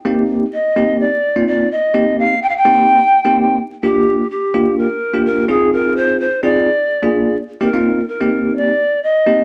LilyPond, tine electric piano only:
\new Staff \with { instrumentName = "Tine electric piano" } { \time 4/4 \key c \minor \tempo 4 = 127 <bes c' ees' g'>8. r8. <bes c' ees' g'>8. r8 <bes c' ees' f'>8. r8 | <bes c' ees' g'>8. r8. <bes c' ees' g'>8. r8 <bes c' ees' g'>8. r8 | <bes d' f' g'>8. r8. <bes d' f' g'>8. r8 <bes d' f' g'>8. <c' ees' f' aes'>8~ | <c' ees' f' aes'>4 r8 <c' ees' f' aes'>8 r8. <bes d' f' aes'>8. r8 |
<bes c' ees' g'>16 <bes c' ees' f'>8 r8 <bes c' ees' g'>4 r4 r16 <bes c' ees' g'>8 | }